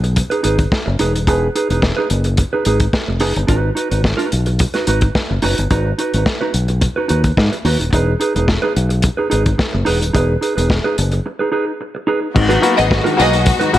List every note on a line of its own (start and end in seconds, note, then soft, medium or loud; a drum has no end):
0.00 0.21 B1 medium
0.00 muted clean electric guitar stroke soft
0.00 closed hi-hat soft
0.16 muted clean electric guitar stroke soft
0.16 kick loud
0.16 closed hi-hat medium
0.30 0.42 D#4 soft
0.30 0.43 G#4 medium
0.30 0.44 B4 medium
0.30 closed hi-hat soft
0.43 0.65 G#1 medium
0.43 0.63 D#4 medium
0.43 0.59 G#4 medium
0.43 0.58 B4 medium
0.43 closed hi-hat medium
0.59 muted clean electric guitar stroke soft
0.59 kick medium
0.59 closed hi-hat soft
0.72 muted clean electric guitar stroke soft
0.72 kick loud
0.72 snare medium
0.86 0.97 F#1 medium
0.86 muted clean electric guitar stroke soft
0.99 1.15 E1 medium
0.99 1.18 D#4 medium
0.99 1.14 G#4 medium
0.99 1.13 B4 medium
0.99 closed hi-hat medium
1.15 1.27 D#1 medium
1.15 muted clean electric guitar stroke soft
1.15 closed hi-hat medium
1.27 1.48 E1 medium
1.27 1.46 D#4 medium
1.27 1.47 G#4 medium
1.27 1.47 B4 medium
1.27 kick loud
1.27 closed hi-hat medium
1.55 1.70 D#4 medium
1.55 1.70 G#4 medium
1.55 1.69 B4 medium
1.55 closed hi-hat soft
1.70 1.91 E1 medium
1.70 1.82 D#4 soft
1.70 1.83 G#4 soft
1.70 1.83 B4 medium
1.70 closed hi-hat soft
1.82 muted clean electric guitar stroke soft
1.82 kick medium
1.82 snare medium
1.97 2.09 D#4 medium
1.97 2.10 G#4 medium
1.97 2.10 B4 medium
2.10 2.42 F#1 medium
2.10 muted clean electric guitar stroke soft
2.10 closed hi-hat medium
2.24 muted clean electric guitar stroke soft
2.24 closed hi-hat soft
2.37 muted clean electric guitar stroke soft
2.37 kick loud
2.37 closed hi-hat medium
2.53 2.65 D#4 soft
2.53 2.66 G#4 soft
2.53 2.66 B4 medium
2.65 2.87 G#1 medium
2.65 2.85 D#4 medium
2.65 2.81 G#4 medium
2.65 2.80 B4 medium
2.65 closed hi-hat medium
2.80 muted clean electric guitar stroke soft
2.80 kick medium
2.80 closed hi-hat soft
2.93 muted clean electric guitar stroke soft
2.93 kick loud
2.93 snare loud
3.08 3.22 F1 medium
3.08 muted clean electric guitar stroke soft
3.20 3.32 F#1 medium
3.20 3.40 D#4 medium
3.20 3.36 G#4 medium
3.20 3.34 B4 medium
3.20 open hi-hat medium
3.36 3.46 G1 medium
3.36 muted clean electric guitar stroke soft
3.36 closed hi-hat soft
3.47 3.70 G#1 loud
3.47 3.69 D#4 medium
3.47 3.69 F#4 medium
3.47 3.69 B4 medium
3.47 kick loud
3.47 closed hi-hat medium
3.75 3.91 D#4 medium
3.75 3.90 F#4 medium
3.75 3.89 B4 medium
3.75 closed hi-hat medium
3.91 4.12 G#1 medium
3.91 4.03 D#4 soft
3.91 4.03 F#4 soft
3.91 4.04 B4 medium
3.91 closed hi-hat soft
4.04 muted clean electric guitar stroke soft
4.04 kick medium
4.04 snare medium
4.17 4.31 D#4 medium
4.17 4.31 F#4 medium
4.17 4.31 B4 medium
4.17 closed hi-hat soft
4.32 4.64 B1 medium
4.32 muted clean electric guitar stroke soft
4.32 closed hi-hat medium
4.46 muted clean electric guitar stroke soft
4.46 closed hi-hat soft
4.59 muted clean electric guitar stroke soft
4.59 kick loud
4.59 closed hi-hat medium
4.74 4.86 D#4 soft
4.74 4.87 F#4 medium
4.74 4.88 B4 medium
4.74 snare soft
4.74 closed hi-hat soft
4.87 5.08 G#1 medium
4.87 5.06 D#4 medium
4.87 5.02 F#4 medium
4.87 5.01 B4 loud
4.87 closed hi-hat medium
5.01 muted clean electric guitar stroke soft
5.01 kick medium
5.01 closed hi-hat soft
5.15 muted clean electric guitar stroke soft
5.15 kick loud
5.15 snare loud
5.30 5.40 F#1 medium
5.30 muted clean electric guitar stroke soft
5.42 5.54 F#1 medium
5.42 5.62 D#4 medium
5.42 5.58 F#4 medium
5.42 5.57 B4 medium
5.42 open hi-hat medium
5.58 5.68 G1 medium
5.58 muted clean electric guitar stroke soft
5.58 closed hi-hat soft
5.71 5.92 G#1 loud
5.71 5.90 D#4 medium
5.71 5.90 F#4 medium
5.71 5.90 B4 medium
5.71 kick loud
5.71 closed hi-hat medium
5.98 6.14 D#4 medium
5.98 6.14 F#4 medium
5.98 6.13 B4 medium
5.98 closed hi-hat medium
6.14 6.24 G#1 medium
6.14 6.25 D#4 soft
6.14 6.25 F#4 soft
6.14 6.26 B4 medium
6.14 closed hi-hat soft
6.26 kick medium
6.26 snare loud
6.41 6.52 D#4 medium
6.41 6.53 F#4 medium
6.41 6.54 B4 medium
6.53 6.86 B1 medium
6.53 muted clean electric guitar stroke soft
6.53 closed hi-hat medium
6.68 muted clean electric guitar stroke soft
6.68 closed hi-hat soft
6.81 muted clean electric guitar stroke soft
6.81 kick loud
6.81 closed hi-hat medium
6.96 7.07 D#4 soft
6.96 7.08 F#4 soft
6.96 7.09 B4 medium
7.08 7.31 D#2 medium
7.08 7.28 D#4 medium
7.08 7.24 F#4 medium
7.08 7.23 B4 medium
7.08 closed hi-hat medium
7.24 muted clean electric guitar stroke soft
7.24 kick medium
7.24 closed hi-hat soft
7.37 7.49 G#2 medium
7.37 muted clean electric guitar stroke soft
7.37 kick loud
7.37 snare loud
7.52 muted clean electric guitar stroke soft
7.52 closed hi-hat soft
7.65 7.76 D#2 medium
7.65 7.84 D#4 medium
7.65 7.80 F#4 medium
7.65 7.79 B4 medium
7.65 open hi-hat medium
7.79 7.89 D#1 medium
7.79 muted clean electric guitar stroke soft
7.79 closed hi-hat soft
7.93 8.14 E1 loud
7.93 8.12 D#4 medium
7.93 8.12 G#4 medium
7.93 8.13 B4 medium
7.93 kick medium
7.93 closed hi-hat medium
8.20 8.35 D#4 medium
8.20 8.35 G#4 medium
8.20 8.34 B4 medium
8.20 closed hi-hat medium
8.35 8.56 E1 medium
8.35 8.48 D#4 soft
8.35 8.49 G#4 medium
8.35 8.49 B4 medium
8.35 closed hi-hat soft
8.48 kick medium
8.48 snare loud
8.62 8.74 D#4 medium
8.62 8.75 G#4 medium
8.62 8.75 B4 medium
8.75 9.08 B1 medium
8.75 muted clean electric guitar stroke soft
8.75 closed hi-hat medium
8.89 muted clean electric guitar stroke medium
8.89 closed hi-hat soft
9.02 muted clean electric guitar stroke soft
9.02 kick loud
9.02 closed hi-hat medium
9.17 9.29 D#4 soft
9.17 9.30 G#4 medium
9.17 9.30 B4 medium
9.30 9.53 G#1 medium
9.30 9.50 D#4 medium
9.30 9.45 G#4 medium
9.30 9.44 B4 medium
9.30 closed hi-hat medium
9.45 muted clean electric guitar stroke soft
9.45 kick medium
9.45 closed hi-hat soft
9.58 muted clean electric guitar stroke soft
9.58 kick loud
9.58 snare loud
9.73 9.84 F#1 medium
9.73 muted clean electric guitar stroke soft
9.85 10.02 E1 medium
9.85 10.05 D#4 medium
9.85 10.01 G#4 medium
9.85 10.00 B4 medium
9.85 open hi-hat medium
10.01 10.12 D#1 medium
10.01 muted clean electric guitar stroke medium
10.01 closed hi-hat medium
10.13 10.35 E1 loud
10.13 10.33 D#4 medium
10.13 10.33 G#4 medium
10.13 10.34 B4 medium
10.13 kick loud
10.13 closed hi-hat medium
10.41 10.56 D#4 medium
10.41 10.55 G#4 medium
10.41 10.54 B4 medium
10.41 closed hi-hat soft
10.56 10.78 E1 medium
10.56 10.69 D#4 soft
10.56 10.69 G#4 soft
10.56 10.70 B4 medium
10.56 closed hi-hat soft
10.70 kick medium
10.70 snare loud
10.84 10.97 D#4 medium
10.84 10.98 G#4 medium
10.84 10.98 B4 medium
10.98 11.19 F#1 medium
10.98 muted clean electric guitar stroke soft
10.98 closed hi-hat medium
11.11 muted clean electric guitar stroke soft
11.11 closed hi-hat soft
11.26 muted clean electric guitar stroke soft
11.39 11.50 D#4 soft
11.39 11.51 G#4 medium
11.39 11.52 B4 medium
11.52 11.71 D#4 medium
11.52 11.67 G#4 medium
11.52 11.66 B4 medium
11.67 muted clean electric guitar stroke soft
11.81 muted clean electric guitar stroke soft
11.95 muted clean electric guitar stroke soft
12.07 12.27 D#4 medium
12.07 12.21 G#4 medium
12.07 12.21 B4 medium
12.22 muted clean electric guitar stroke soft
12.34 12.57 G#1 loud
12.34 12.49 G#2 medium
12.34 12.49 D#3 medium
12.34 13.79 F#3 medium
12.34 13.79 G#3 medium
12.34 13.79 B3 medium
12.34 13.79 D#4 medium
12.34 13.79 F#4 medium
12.34 muted clean electric guitar stroke soft
12.34 kick loud
12.34 crash loud
12.49 12.55 B3 soft
12.49 12.60 D#4 medium
12.49 12.61 F#4 medium
12.49 12.56 F#4 soft
12.49 12.62 B4 medium
12.49 closed hi-hat soft
12.61 12.77 A#3 medium
12.61 12.76 B3 medium
12.61 12.78 D#4 medium
12.61 12.75 F#4 loud
12.61 12.77 F#4 medium
12.61 12.74 B4 medium
12.61 closed hi-hat medium
12.75 12.99 G#1 loud
12.75 12.89 B3 loud
12.75 12.89 G#4 medium
12.75 12.89 D#5 loud
12.75 muted clean electric guitar stroke medium
12.75 closed hi-hat soft
12.88 12.96 B3 soft
12.88 12.96 F#4 soft
12.88 muted clean electric guitar stroke soft
12.88 kick loud
12.88 snare loud
13.03 13.17 G#2 medium
13.03 13.17 D#3 medium
13.03 13.15 D#4 medium
13.03 13.16 F#4 medium
13.03 13.16 B4 medium
13.03 closed hi-hat soft
13.16 13.51 B1 loud
13.16 13.32 A#3 medium
13.16 13.31 B3 medium
13.16 13.42 B3 loud
13.16 13.33 D#4 medium
13.16 13.32 F#4 medium
13.16 13.42 G#4 loud
13.16 13.30 B4 medium
13.16 13.42 D#5 loud
13.16 closed hi-hat medium
13.31 muted clean electric guitar stroke medium
13.31 closed hi-hat soft
13.45 13.52 B3 soft
13.45 13.52 F#4 soft
13.45 muted clean electric guitar stroke soft
13.45 kick loud
13.45 closed hi-hat loud
13.60 13.73 G#2 medium
13.60 13.72 D#3 medium
13.60 13.71 D#4 medium
13.60 13.72 F#4 medium
13.60 13.73 B4 medium
13.60 closed hi-hat soft
13.72 13.79 G#1 medium
13.72 13.79 A#3 medium
13.72 13.79 B3 medium
13.72 13.79 F#4 medium
13.72 muted clean electric guitar stroke soft
13.72 closed hi-hat medium